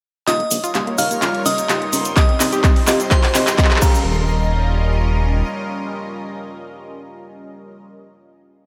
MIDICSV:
0, 0, Header, 1, 9, 480
1, 0, Start_track
1, 0, Tempo, 472441
1, 281, Time_signature, 4, 2, 24, 8
1, 8800, End_track
2, 0, Start_track
2, 0, Title_t, "Synth texture"
2, 0, Program_c, 0, 99
2, 282, Note_on_c, 0, 84, 84
2, 4132, Note_off_c, 0, 84, 0
2, 8800, End_track
3, 0, Start_track
3, 0, Title_t, "Synth bell"
3, 0, Program_c, 1, 98
3, 279, Note_on_c, 1, 75, 70
3, 279, Note_on_c, 1, 87, 88
3, 909, Note_off_c, 1, 75, 0
3, 909, Note_off_c, 1, 87, 0
3, 999, Note_on_c, 1, 77, 74
3, 999, Note_on_c, 1, 89, 83
3, 1434, Note_off_c, 1, 77, 0
3, 1434, Note_off_c, 1, 89, 0
3, 1480, Note_on_c, 1, 75, 68
3, 1481, Note_on_c, 1, 87, 88
3, 2109, Note_off_c, 1, 75, 0
3, 2110, Note_off_c, 1, 87, 0
3, 2200, Note_on_c, 1, 75, 71
3, 2200, Note_on_c, 1, 87, 83
3, 3069, Note_off_c, 1, 75, 0
3, 3069, Note_off_c, 1, 87, 0
3, 3160, Note_on_c, 1, 72, 78
3, 3160, Note_on_c, 1, 84, 94
3, 3880, Note_on_c, 1, 82, 94
3, 3881, Note_off_c, 1, 72, 0
3, 3881, Note_off_c, 1, 84, 0
3, 7926, Note_off_c, 1, 82, 0
3, 8800, End_track
4, 0, Start_track
4, 0, Title_t, "Synth stab"
4, 0, Program_c, 2, 62
4, 281, Note_on_c, 2, 61, 71
4, 281, Note_on_c, 2, 67, 69
4, 401, Note_off_c, 2, 61, 0
4, 401, Note_off_c, 2, 67, 0
4, 521, Note_on_c, 2, 61, 75
4, 521, Note_on_c, 2, 67, 69
4, 733, Note_off_c, 2, 67, 0
4, 734, Note_off_c, 2, 61, 0
4, 761, Note_on_c, 2, 61, 94
4, 761, Note_on_c, 2, 67, 91
4, 761, Note_on_c, 2, 77, 107
4, 881, Note_off_c, 2, 61, 0
4, 881, Note_off_c, 2, 67, 0
4, 881, Note_off_c, 2, 77, 0
4, 1001, Note_on_c, 2, 61, 94
4, 1001, Note_on_c, 2, 67, 91
4, 1001, Note_on_c, 2, 77, 107
4, 1121, Note_off_c, 2, 61, 0
4, 1121, Note_off_c, 2, 67, 0
4, 1121, Note_off_c, 2, 77, 0
4, 1241, Note_on_c, 2, 61, 77
4, 1241, Note_on_c, 2, 67, 68
4, 1241, Note_on_c, 2, 77, 85
4, 1361, Note_off_c, 2, 61, 0
4, 1361, Note_off_c, 2, 67, 0
4, 1361, Note_off_c, 2, 77, 0
4, 1480, Note_on_c, 2, 61, 98
4, 1480, Note_on_c, 2, 67, 86
4, 1480, Note_on_c, 2, 77, 103
4, 1600, Note_off_c, 2, 61, 0
4, 1600, Note_off_c, 2, 67, 0
4, 1600, Note_off_c, 2, 77, 0
4, 1721, Note_on_c, 2, 61, 99
4, 1721, Note_on_c, 2, 67, 87
4, 1721, Note_on_c, 2, 77, 113
4, 1840, Note_off_c, 2, 61, 0
4, 1840, Note_off_c, 2, 67, 0
4, 1841, Note_off_c, 2, 77, 0
4, 1961, Note_on_c, 2, 61, 83
4, 1961, Note_on_c, 2, 67, 77
4, 1961, Note_on_c, 2, 82, 91
4, 2174, Note_off_c, 2, 61, 0
4, 2174, Note_off_c, 2, 67, 0
4, 2174, Note_off_c, 2, 82, 0
4, 2201, Note_on_c, 2, 60, 75
4, 2201, Note_on_c, 2, 75, 79
4, 2321, Note_off_c, 2, 60, 0
4, 2321, Note_off_c, 2, 75, 0
4, 2441, Note_on_c, 2, 60, 83
4, 2441, Note_on_c, 2, 67, 69
4, 2441, Note_on_c, 2, 75, 87
4, 2654, Note_off_c, 2, 60, 0
4, 2654, Note_off_c, 2, 67, 0
4, 2654, Note_off_c, 2, 75, 0
4, 2681, Note_on_c, 2, 60, 99
4, 2681, Note_on_c, 2, 67, 89
4, 2681, Note_on_c, 2, 75, 106
4, 2800, Note_off_c, 2, 60, 0
4, 2800, Note_off_c, 2, 67, 0
4, 2800, Note_off_c, 2, 75, 0
4, 2921, Note_on_c, 2, 60, 102
4, 2921, Note_on_c, 2, 67, 94
4, 2921, Note_on_c, 2, 75, 113
4, 3041, Note_off_c, 2, 60, 0
4, 3041, Note_off_c, 2, 67, 0
4, 3041, Note_off_c, 2, 75, 0
4, 3161, Note_on_c, 2, 60, 79
4, 3161, Note_on_c, 2, 67, 70
4, 3161, Note_on_c, 2, 75, 86
4, 3281, Note_off_c, 2, 60, 0
4, 3281, Note_off_c, 2, 67, 0
4, 3281, Note_off_c, 2, 75, 0
4, 3401, Note_on_c, 2, 60, 99
4, 3402, Note_on_c, 2, 67, 91
4, 3402, Note_on_c, 2, 75, 105
4, 3521, Note_off_c, 2, 60, 0
4, 3521, Note_off_c, 2, 67, 0
4, 3521, Note_off_c, 2, 75, 0
4, 3641, Note_on_c, 2, 60, 102
4, 3641, Note_on_c, 2, 67, 91
4, 3641, Note_on_c, 2, 75, 115
4, 3761, Note_off_c, 2, 60, 0
4, 3761, Note_off_c, 2, 67, 0
4, 3761, Note_off_c, 2, 75, 0
4, 3881, Note_on_c, 2, 61, 85
4, 3881, Note_on_c, 2, 67, 79
4, 3881, Note_on_c, 2, 77, 96
4, 7927, Note_off_c, 2, 61, 0
4, 7927, Note_off_c, 2, 67, 0
4, 7927, Note_off_c, 2, 77, 0
4, 8800, End_track
5, 0, Start_track
5, 0, Title_t, "Analog synth pad"
5, 0, Program_c, 3, 89
5, 279, Note_on_c, 3, 70, 71
5, 279, Note_on_c, 3, 73, 88
5, 280, Note_on_c, 3, 55, 80
5, 280, Note_on_c, 3, 63, 73
5, 280, Note_on_c, 3, 65, 76
5, 2181, Note_off_c, 3, 65, 0
5, 2181, Note_off_c, 3, 70, 0
5, 2181, Note_off_c, 3, 73, 0
5, 2202, Note_on_c, 3, 60, 72
5, 2202, Note_on_c, 3, 72, 75
5, 2202, Note_on_c, 3, 75, 89
5, 3844, Note_off_c, 3, 55, 0
5, 3845, Note_off_c, 3, 63, 0
5, 3865, Note_off_c, 3, 60, 0
5, 3865, Note_off_c, 3, 72, 0
5, 3865, Note_off_c, 3, 75, 0
5, 3880, Note_on_c, 3, 55, 74
5, 3880, Note_on_c, 3, 61, 71
5, 3880, Note_on_c, 3, 70, 73
5, 3880, Note_on_c, 3, 75, 89
5, 3881, Note_on_c, 3, 65, 76
5, 7926, Note_off_c, 3, 55, 0
5, 7926, Note_off_c, 3, 61, 0
5, 7926, Note_off_c, 3, 70, 0
5, 7926, Note_off_c, 3, 75, 0
5, 7927, Note_off_c, 3, 65, 0
5, 8800, End_track
6, 0, Start_track
6, 0, Title_t, "Synth arpeggio sound"
6, 0, Program_c, 4, 84
6, 280, Note_on_c, 4, 65, 96
6, 367, Note_off_c, 4, 65, 0
6, 406, Note_on_c, 4, 58, 58
6, 485, Note_off_c, 4, 58, 0
6, 520, Note_on_c, 4, 58, 62
6, 607, Note_off_c, 4, 58, 0
6, 647, Note_on_c, 4, 65, 95
6, 725, Note_off_c, 4, 65, 0
6, 761, Note_on_c, 4, 58, 63
6, 848, Note_off_c, 4, 58, 0
6, 887, Note_on_c, 4, 58, 62
6, 966, Note_off_c, 4, 58, 0
6, 1001, Note_on_c, 4, 63, 84
6, 1088, Note_off_c, 4, 63, 0
6, 1127, Note_on_c, 4, 58, 63
6, 1205, Note_off_c, 4, 58, 0
6, 1241, Note_on_c, 4, 65, 90
6, 2109, Note_off_c, 4, 65, 0
6, 2200, Note_on_c, 4, 67, 101
6, 2287, Note_off_c, 4, 67, 0
6, 2326, Note_on_c, 4, 60, 59
6, 2405, Note_off_c, 4, 60, 0
6, 2441, Note_on_c, 4, 60, 62
6, 2528, Note_off_c, 4, 60, 0
6, 2566, Note_on_c, 4, 67, 98
6, 2645, Note_off_c, 4, 67, 0
6, 2681, Note_on_c, 4, 60, 66
6, 2767, Note_off_c, 4, 60, 0
6, 2806, Note_on_c, 4, 60, 68
6, 2885, Note_off_c, 4, 60, 0
6, 2920, Note_on_c, 4, 65, 90
6, 3007, Note_off_c, 4, 65, 0
6, 3046, Note_on_c, 4, 60, 65
6, 3125, Note_off_c, 4, 60, 0
6, 3160, Note_on_c, 4, 67, 95
6, 3869, Note_off_c, 4, 67, 0
6, 3881, Note_on_c, 4, 67, 95
6, 7927, Note_off_c, 4, 67, 0
6, 8800, End_track
7, 0, Start_track
7, 0, Title_t, "Analog synth bass"
7, 0, Program_c, 5, 38
7, 280, Note_on_c, 5, 27, 96
7, 435, Note_off_c, 5, 27, 0
7, 520, Note_on_c, 5, 34, 93
7, 600, Note_off_c, 5, 34, 0
7, 760, Note_on_c, 5, 27, 74
7, 839, Note_off_c, 5, 27, 0
7, 1001, Note_on_c, 5, 27, 96
7, 1156, Note_off_c, 5, 27, 0
7, 1240, Note_on_c, 5, 27, 88
7, 1320, Note_off_c, 5, 27, 0
7, 1480, Note_on_c, 5, 27, 87
7, 1636, Note_off_c, 5, 27, 0
7, 1720, Note_on_c, 5, 27, 90
7, 1876, Note_off_c, 5, 27, 0
7, 1960, Note_on_c, 5, 27, 105
7, 2116, Note_off_c, 5, 27, 0
7, 2200, Note_on_c, 5, 27, 103
7, 2356, Note_off_c, 5, 27, 0
7, 2440, Note_on_c, 5, 34, 90
7, 2520, Note_off_c, 5, 34, 0
7, 3400, Note_on_c, 5, 27, 95
7, 3556, Note_off_c, 5, 27, 0
7, 8800, End_track
8, 0, Start_track
8, 0, Title_t, "Riser"
8, 0, Program_c, 6, 103
8, 281, Note_on_c, 6, 60, 68
8, 4121, Note_off_c, 6, 60, 0
8, 8800, End_track
9, 0, Start_track
9, 0, Title_t, "Drums"
9, 280, Note_on_c, 9, 39, 45
9, 280, Note_on_c, 9, 42, 52
9, 283, Note_on_c, 9, 69, 36
9, 382, Note_off_c, 9, 39, 0
9, 382, Note_off_c, 9, 42, 0
9, 385, Note_off_c, 9, 69, 0
9, 407, Note_on_c, 9, 42, 25
9, 508, Note_off_c, 9, 42, 0
9, 518, Note_on_c, 9, 69, 93
9, 521, Note_on_c, 9, 46, 101
9, 620, Note_off_c, 9, 69, 0
9, 622, Note_off_c, 9, 46, 0
9, 647, Note_on_c, 9, 42, 53
9, 651, Note_on_c, 9, 69, 48
9, 748, Note_off_c, 9, 42, 0
9, 753, Note_off_c, 9, 69, 0
9, 756, Note_on_c, 9, 69, 34
9, 761, Note_on_c, 9, 39, 49
9, 761, Note_on_c, 9, 42, 53
9, 857, Note_off_c, 9, 69, 0
9, 863, Note_off_c, 9, 39, 0
9, 863, Note_off_c, 9, 42, 0
9, 887, Note_on_c, 9, 42, 26
9, 988, Note_off_c, 9, 42, 0
9, 998, Note_on_c, 9, 69, 78
9, 1001, Note_on_c, 9, 46, 104
9, 1099, Note_off_c, 9, 69, 0
9, 1102, Note_off_c, 9, 46, 0
9, 1127, Note_on_c, 9, 42, 54
9, 1127, Note_on_c, 9, 69, 49
9, 1228, Note_off_c, 9, 69, 0
9, 1229, Note_off_c, 9, 42, 0
9, 1241, Note_on_c, 9, 39, 56
9, 1241, Note_on_c, 9, 42, 55
9, 1242, Note_on_c, 9, 69, 37
9, 1343, Note_off_c, 9, 39, 0
9, 1343, Note_off_c, 9, 42, 0
9, 1344, Note_off_c, 9, 69, 0
9, 1367, Note_on_c, 9, 42, 26
9, 1469, Note_off_c, 9, 42, 0
9, 1481, Note_on_c, 9, 46, 99
9, 1483, Note_on_c, 9, 69, 84
9, 1582, Note_off_c, 9, 46, 0
9, 1584, Note_off_c, 9, 69, 0
9, 1607, Note_on_c, 9, 42, 52
9, 1608, Note_on_c, 9, 69, 53
9, 1709, Note_off_c, 9, 42, 0
9, 1710, Note_off_c, 9, 69, 0
9, 1721, Note_on_c, 9, 39, 66
9, 1721, Note_on_c, 9, 42, 54
9, 1721, Note_on_c, 9, 69, 39
9, 1823, Note_off_c, 9, 39, 0
9, 1823, Note_off_c, 9, 42, 0
9, 1823, Note_off_c, 9, 69, 0
9, 1847, Note_on_c, 9, 42, 27
9, 1949, Note_off_c, 9, 42, 0
9, 1960, Note_on_c, 9, 69, 86
9, 1961, Note_on_c, 9, 46, 106
9, 2061, Note_off_c, 9, 69, 0
9, 2062, Note_off_c, 9, 46, 0
9, 2082, Note_on_c, 9, 69, 52
9, 2087, Note_on_c, 9, 42, 54
9, 2184, Note_off_c, 9, 69, 0
9, 2188, Note_off_c, 9, 42, 0
9, 2200, Note_on_c, 9, 36, 115
9, 2200, Note_on_c, 9, 69, 43
9, 2201, Note_on_c, 9, 39, 73
9, 2201, Note_on_c, 9, 42, 52
9, 2301, Note_off_c, 9, 69, 0
9, 2302, Note_off_c, 9, 36, 0
9, 2302, Note_off_c, 9, 39, 0
9, 2302, Note_off_c, 9, 42, 0
9, 2326, Note_on_c, 9, 42, 26
9, 2428, Note_off_c, 9, 42, 0
9, 2440, Note_on_c, 9, 39, 72
9, 2440, Note_on_c, 9, 46, 106
9, 2443, Note_on_c, 9, 69, 92
9, 2542, Note_off_c, 9, 39, 0
9, 2542, Note_off_c, 9, 46, 0
9, 2545, Note_off_c, 9, 69, 0
9, 2564, Note_on_c, 9, 69, 46
9, 2566, Note_on_c, 9, 42, 54
9, 2665, Note_off_c, 9, 69, 0
9, 2668, Note_off_c, 9, 42, 0
9, 2680, Note_on_c, 9, 36, 122
9, 2681, Note_on_c, 9, 39, 77
9, 2681, Note_on_c, 9, 42, 52
9, 2683, Note_on_c, 9, 69, 41
9, 2782, Note_off_c, 9, 36, 0
9, 2782, Note_off_c, 9, 39, 0
9, 2782, Note_off_c, 9, 42, 0
9, 2784, Note_off_c, 9, 69, 0
9, 2807, Note_on_c, 9, 46, 64
9, 2908, Note_off_c, 9, 46, 0
9, 2917, Note_on_c, 9, 69, 87
9, 2920, Note_on_c, 9, 39, 84
9, 2920, Note_on_c, 9, 46, 108
9, 3018, Note_off_c, 9, 69, 0
9, 3022, Note_off_c, 9, 39, 0
9, 3022, Note_off_c, 9, 46, 0
9, 3047, Note_on_c, 9, 42, 54
9, 3049, Note_on_c, 9, 69, 56
9, 3148, Note_off_c, 9, 42, 0
9, 3151, Note_off_c, 9, 69, 0
9, 3160, Note_on_c, 9, 36, 127
9, 3160, Note_on_c, 9, 39, 90
9, 3160, Note_on_c, 9, 42, 57
9, 3160, Note_on_c, 9, 69, 41
9, 3261, Note_off_c, 9, 69, 0
9, 3262, Note_off_c, 9, 36, 0
9, 3262, Note_off_c, 9, 39, 0
9, 3262, Note_off_c, 9, 42, 0
9, 3287, Note_on_c, 9, 39, 83
9, 3287, Note_on_c, 9, 46, 64
9, 3388, Note_off_c, 9, 39, 0
9, 3388, Note_off_c, 9, 46, 0
9, 3400, Note_on_c, 9, 39, 96
9, 3400, Note_on_c, 9, 46, 111
9, 3403, Note_on_c, 9, 69, 97
9, 3502, Note_off_c, 9, 39, 0
9, 3502, Note_off_c, 9, 46, 0
9, 3505, Note_off_c, 9, 69, 0
9, 3526, Note_on_c, 9, 39, 90
9, 3526, Note_on_c, 9, 42, 56
9, 3530, Note_on_c, 9, 69, 60
9, 3628, Note_off_c, 9, 39, 0
9, 3628, Note_off_c, 9, 42, 0
9, 3632, Note_off_c, 9, 69, 0
9, 3641, Note_on_c, 9, 36, 123
9, 3641, Note_on_c, 9, 39, 103
9, 3641, Note_on_c, 9, 42, 55
9, 3641, Note_on_c, 9, 69, 38
9, 3704, Note_off_c, 9, 39, 0
9, 3704, Note_on_c, 9, 39, 92
9, 3742, Note_off_c, 9, 36, 0
9, 3742, Note_off_c, 9, 42, 0
9, 3743, Note_off_c, 9, 69, 0
9, 3767, Note_off_c, 9, 39, 0
9, 3767, Note_on_c, 9, 39, 85
9, 3767, Note_on_c, 9, 42, 27
9, 3824, Note_off_c, 9, 39, 0
9, 3824, Note_on_c, 9, 39, 90
9, 3868, Note_off_c, 9, 42, 0
9, 3879, Note_on_c, 9, 69, 101
9, 3881, Note_on_c, 9, 36, 110
9, 3881, Note_on_c, 9, 49, 95
9, 3926, Note_off_c, 9, 39, 0
9, 3981, Note_off_c, 9, 69, 0
9, 3983, Note_off_c, 9, 36, 0
9, 3983, Note_off_c, 9, 49, 0
9, 4009, Note_on_c, 9, 69, 57
9, 4111, Note_off_c, 9, 69, 0
9, 8800, End_track
0, 0, End_of_file